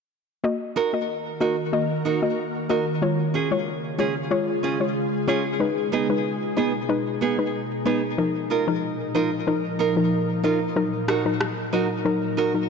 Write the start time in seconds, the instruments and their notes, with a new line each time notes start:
0.44 ambient pad D#3 A#3 F#4 A#4, synth pluck A#3 F#4 D#5
0.76 nylon-string guitar D#4 F#4 A#4
0.93 synth pluck A#3 F#4 D#5
1.40 synth pluck A#3 F#4 D#5, nylon-string guitar D#4 F#4 A#4
1.73 synth pluck A#3 F#4 D#5
2.05 nylon-string guitar D#4 F#4 A#4
2.22 synth pluck A#3 F#4 D#5
2.69 synth pluck A#3 F#4 D#5, nylon-string guitar D#4 F#4 A#4
3.02 ambient pad C#3 G#3 F4 G#4, synth pluck G#3 F4 C#5
3.34 nylon-string guitar C#4 F4 G#4
3.51 synth pluck G#3 F4 C#5
3.98 synth pluck G#3 F4 C#5, nylon-string guitar C#4 F4 G#4
4.31 synth pluck G#3 F4 C#5
4.63 nylon-string guitar C#4 F4 G#4
4.80 synth pluck G#3 F4 C#5
5.28 synth pluck G#3 F4 C#5, nylon-string guitar C#4 F4 G#4
5.60 ambient pad B2 D#4, synth pluck G#3 D#4 B4
5.92 nylon-string guitar B3 D#4 G#4
6.09 synth pluck G#3 D#4 B4
6.56 synth pluck G#3 D#4 B4, nylon-string guitar B3 D#4 G#4
6.89 synth pluck G#3 D#4 B4
7.21 nylon-string guitar B3 D#4 G#4
7.38 synth pluck G#3 D#4 B4
7.85 synth pluck G#3 D#4 B4, nylon-string guitar B3 D#4 G#4
8.18 ambient pad A#2 F3 A#4, synth pluck F3 D#4 A#4
8.50 nylon-string guitar D#4 F4 A#4
8.67 synth pluck F3 D#4 A#4
9.14 synth pluck F3 D#4 A#4, nylon-string guitar D#4 F4 A#4
9.47 synth pluck F3 D#4 A#4
9.79 nylon-string guitar D#4 F4 A#4
9.96 synth pluck F3 D#4 A#4
10.44 synth pluck F3 D#4 A#4, nylon-string guitar D#4 F4 A#4
10.76 synth pluck F#3 D#4 A#4, ambient pad F#3 A#4
11.08 nylon-string guitar D#4 F#4 A#4, cross-stick
11.25 synth pluck F#3 D#4 A#4
11.41 cross-stick
11.73 synth pluck F#3 D#4 A#4, nylon-string guitar D#4 F#4 A#4
12.05 synth pluck F#3 D#4 A#4
12.37 nylon-string guitar D#4 F#4 A#4
12.54 synth pluck F#3 D#4 A#4